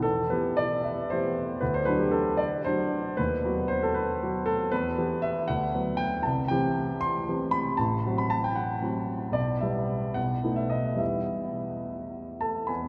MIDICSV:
0, 0, Header, 1, 2, 480
1, 0, Start_track
1, 0, Key_signature, 1, "minor"
1, 0, Tempo, 538600
1, 26, Time_signature, 6, 3, 24, 8
1, 985, Tempo, 517688
1, 2905, Tempo, 513259
1, 8185, Tempo, 532860
1, 9145, Tempo, 558140
1, 11719, End_track
2, 0, Start_track
2, 0, Title_t, "Grand piano"
2, 0, Program_c, 0, 0
2, 0, Control_c, 0, 64, 127
2, 22, Note_on_c, 0, 69, 77
2, 35, Note_on_c, 0, 40, 44
2, 43, Control_c, 0, 64, 0
2, 182, Control_c, 0, 64, 127
2, 268, Note_on_c, 0, 71, 62
2, 269, Note_off_c, 0, 40, 0
2, 269, Note_off_c, 0, 69, 0
2, 282, Note_on_c, 0, 52, 36
2, 285, Note_on_c, 0, 59, 36
2, 291, Note_on_c, 0, 67, 40
2, 506, Note_on_c, 0, 74, 75
2, 513, Note_off_c, 0, 71, 0
2, 749, Note_off_c, 0, 74, 0
2, 749, Note_on_c, 0, 76, 54
2, 954, Note_off_c, 0, 52, 0
2, 956, Note_off_c, 0, 59, 0
2, 959, Note_off_c, 0, 67, 0
2, 982, Note_off_c, 0, 76, 0
2, 982, Note_on_c, 0, 72, 68
2, 1001, Note_on_c, 0, 52, 36
2, 1008, Note_on_c, 0, 59, 36
2, 1009, Note_on_c, 0, 67, 39
2, 1427, Note_off_c, 0, 52, 0
2, 1431, Note_off_c, 0, 59, 0
2, 1431, Note_off_c, 0, 67, 0
2, 1449, Note_on_c, 0, 71, 66
2, 1454, Note_off_c, 0, 72, 0
2, 1464, Note_on_c, 0, 38, 47
2, 1470, Control_c, 0, 64, 0
2, 1571, Note_off_c, 0, 71, 0
2, 1575, Note_on_c, 0, 72, 75
2, 1639, Control_c, 0, 64, 127
2, 1678, Note_on_c, 0, 71, 71
2, 1690, Note_off_c, 0, 38, 0
2, 1692, Note_on_c, 0, 54, 37
2, 1693, Note_off_c, 0, 72, 0
2, 1698, Note_on_c, 0, 62, 41
2, 1700, Note_on_c, 0, 66, 38
2, 1804, Note_off_c, 0, 71, 0
2, 1808, Note_on_c, 0, 67, 56
2, 1920, Note_on_c, 0, 69, 69
2, 1929, Note_off_c, 0, 67, 0
2, 2161, Note_on_c, 0, 74, 67
2, 2165, Note_off_c, 0, 69, 0
2, 2186, Control_c, 0, 64, 0
2, 2363, Control_c, 0, 64, 127
2, 2377, Note_off_c, 0, 54, 0
2, 2380, Note_off_c, 0, 62, 0
2, 2381, Note_off_c, 0, 66, 0
2, 2410, Note_off_c, 0, 74, 0
2, 2413, Note_on_c, 0, 72, 78
2, 2428, Note_on_c, 0, 54, 35
2, 2429, Note_on_c, 0, 62, 33
2, 2439, Note_on_c, 0, 66, 34
2, 2874, Note_off_c, 0, 54, 0
2, 2874, Note_off_c, 0, 62, 0
2, 2880, Note_off_c, 0, 66, 0
2, 2900, Note_on_c, 0, 71, 76
2, 2903, Note_off_c, 0, 72, 0
2, 2916, Note_on_c, 0, 39, 45
2, 2922, Control_c, 0, 64, 0
2, 3046, Control_c, 0, 64, 127
2, 3146, Note_off_c, 0, 39, 0
2, 3156, Note_on_c, 0, 54, 40
2, 3160, Note_on_c, 0, 59, 43
2, 3162, Note_on_c, 0, 66, 43
2, 3376, Note_on_c, 0, 72, 77
2, 3386, Note_off_c, 0, 71, 0
2, 3501, Note_off_c, 0, 72, 0
2, 3515, Note_on_c, 0, 69, 68
2, 3622, Note_on_c, 0, 71, 64
2, 3631, Note_off_c, 0, 69, 0
2, 3835, Note_off_c, 0, 54, 0
2, 3837, Note_off_c, 0, 59, 0
2, 3838, Note_off_c, 0, 66, 0
2, 3883, Note_on_c, 0, 54, 37
2, 3885, Note_on_c, 0, 59, 35
2, 3892, Note_on_c, 0, 66, 45
2, 4103, Note_off_c, 0, 71, 0
2, 4103, Note_on_c, 0, 69, 79
2, 4309, Note_off_c, 0, 54, 0
2, 4311, Note_off_c, 0, 59, 0
2, 4314, Note_off_c, 0, 66, 0
2, 4338, Note_off_c, 0, 69, 0
2, 4345, Note_on_c, 0, 71, 80
2, 4354, Note_on_c, 0, 40, 53
2, 4358, Control_c, 0, 64, 0
2, 4482, Control_c, 0, 64, 127
2, 4576, Note_off_c, 0, 40, 0
2, 4591, Note_on_c, 0, 52, 39
2, 4595, Note_on_c, 0, 59, 38
2, 4597, Note_on_c, 0, 67, 42
2, 4818, Note_on_c, 0, 76, 83
2, 4819, Note_off_c, 0, 71, 0
2, 5027, Note_off_c, 0, 52, 0
2, 5029, Note_off_c, 0, 59, 0
2, 5030, Note_off_c, 0, 67, 0
2, 5056, Note_on_c, 0, 78, 74
2, 5057, Note_off_c, 0, 76, 0
2, 5071, Note_on_c, 0, 38, 46
2, 5072, Control_c, 0, 64, 0
2, 5214, Control_c, 0, 64, 127
2, 5294, Note_off_c, 0, 38, 0
2, 5294, Note_off_c, 0, 78, 0
2, 5304, Note_on_c, 0, 54, 40
2, 5308, Note_on_c, 0, 59, 39
2, 5311, Note_on_c, 0, 71, 43
2, 5518, Note_on_c, 0, 79, 81
2, 5734, Note_off_c, 0, 54, 0
2, 5736, Note_off_c, 0, 59, 0
2, 5738, Note_off_c, 0, 71, 0
2, 5760, Note_off_c, 0, 79, 0
2, 5760, Note_on_c, 0, 81, 67
2, 5777, Note_on_c, 0, 36, 49
2, 5780, Control_c, 0, 64, 0
2, 5938, Control_c, 0, 64, 127
2, 5998, Note_on_c, 0, 79, 70
2, 6003, Note_off_c, 0, 81, 0
2, 6005, Note_off_c, 0, 36, 0
2, 6019, Note_on_c, 0, 52, 40
2, 6023, Note_on_c, 0, 60, 43
2, 6024, Note_on_c, 0, 67, 47
2, 6486, Note_off_c, 0, 79, 0
2, 6488, Note_on_c, 0, 84, 86
2, 6698, Note_off_c, 0, 52, 0
2, 6700, Note_off_c, 0, 60, 0
2, 6700, Note_off_c, 0, 67, 0
2, 6745, Note_on_c, 0, 52, 39
2, 6750, Note_on_c, 0, 60, 36
2, 6754, Note_on_c, 0, 67, 45
2, 6961, Note_on_c, 0, 83, 81
2, 6967, Note_off_c, 0, 84, 0
2, 7182, Note_off_c, 0, 52, 0
2, 7185, Note_off_c, 0, 60, 0
2, 7187, Note_off_c, 0, 67, 0
2, 7204, Note_on_c, 0, 81, 73
2, 7208, Note_off_c, 0, 83, 0
2, 7218, Note_on_c, 0, 33, 50
2, 7229, Control_c, 0, 64, 0
2, 7370, Control_c, 0, 64, 127
2, 7450, Note_off_c, 0, 33, 0
2, 7469, Note_on_c, 0, 54, 37
2, 7474, Note_on_c, 0, 60, 35
2, 7476, Note_on_c, 0, 66, 41
2, 7571, Note_off_c, 0, 81, 0
2, 7587, Note_on_c, 0, 83, 71
2, 7697, Note_on_c, 0, 81, 77
2, 7701, Note_off_c, 0, 83, 0
2, 7817, Note_off_c, 0, 81, 0
2, 7829, Note_on_c, 0, 79, 61
2, 7935, Note_on_c, 0, 78, 59
2, 7944, Note_off_c, 0, 79, 0
2, 8153, Note_off_c, 0, 54, 0
2, 8155, Note_off_c, 0, 60, 0
2, 8157, Note_off_c, 0, 66, 0
2, 8185, Note_on_c, 0, 54, 30
2, 8186, Note_on_c, 0, 60, 35
2, 8191, Note_on_c, 0, 66, 37
2, 8420, Note_off_c, 0, 78, 0
2, 8625, Note_off_c, 0, 54, 0
2, 8625, Note_off_c, 0, 60, 0
2, 8627, Note_off_c, 0, 66, 0
2, 8630, Note_on_c, 0, 35, 43
2, 8643, Note_on_c, 0, 74, 65
2, 8678, Control_c, 0, 64, 0
2, 8821, Control_c, 0, 64, 127
2, 8877, Note_off_c, 0, 35, 0
2, 8890, Note_on_c, 0, 76, 57
2, 8891, Note_off_c, 0, 74, 0
2, 8908, Note_on_c, 0, 55, 36
2, 8911, Note_on_c, 0, 59, 36
2, 8912, Note_on_c, 0, 64, 37
2, 9350, Note_off_c, 0, 55, 0
2, 9352, Note_off_c, 0, 59, 0
2, 9352, Note_off_c, 0, 64, 0
2, 9365, Note_on_c, 0, 78, 59
2, 9375, Note_on_c, 0, 35, 38
2, 9376, Note_off_c, 0, 76, 0
2, 9398, Control_c, 0, 64, 0
2, 9519, Control_c, 0, 64, 127
2, 9609, Note_off_c, 0, 35, 0
2, 9616, Note_on_c, 0, 57, 26
2, 9620, Note_on_c, 0, 59, 30
2, 9625, Note_on_c, 0, 63, 33
2, 9723, Note_on_c, 0, 76, 55
2, 9730, Note_off_c, 0, 78, 0
2, 9840, Note_on_c, 0, 75, 55
2, 9850, Note_off_c, 0, 76, 0
2, 10053, Note_on_c, 0, 40, 32
2, 10062, Note_off_c, 0, 59, 0
2, 10065, Note_off_c, 0, 57, 0
2, 10067, Note_on_c, 0, 55, 28
2, 10069, Note_off_c, 0, 63, 0
2, 10075, Note_on_c, 0, 59, 27
2, 10085, Note_on_c, 0, 64, 27
2, 10088, Note_on_c, 0, 76, 52
2, 10092, Note_off_c, 0, 75, 0
2, 10119, Control_c, 0, 64, 0
2, 10255, Control_c, 0, 64, 127
2, 11311, Note_on_c, 0, 81, 58
2, 11316, Note_off_c, 0, 76, 0
2, 11321, Note_on_c, 0, 69, 44
2, 11498, Note_off_c, 0, 40, 0
2, 11505, Note_off_c, 0, 55, 0
2, 11510, Note_off_c, 0, 59, 0
2, 11515, Note_off_c, 0, 64, 0
2, 11537, Note_on_c, 0, 83, 51
2, 11539, Note_off_c, 0, 69, 0
2, 11546, Note_on_c, 0, 80, 38
2, 11549, Note_on_c, 0, 71, 36
2, 11551, Note_off_c, 0, 81, 0
2, 11551, Note_on_c, 0, 40, 36
2, 11571, Control_c, 0, 64, 0
2, 11664, Note_on_c, 0, 59, 30
2, 11715, Control_c, 0, 64, 127
2, 11719, Note_off_c, 0, 40, 0
2, 11719, Note_off_c, 0, 59, 0
2, 11719, Note_off_c, 0, 71, 0
2, 11719, Note_off_c, 0, 80, 0
2, 11719, Note_off_c, 0, 83, 0
2, 11719, End_track
0, 0, End_of_file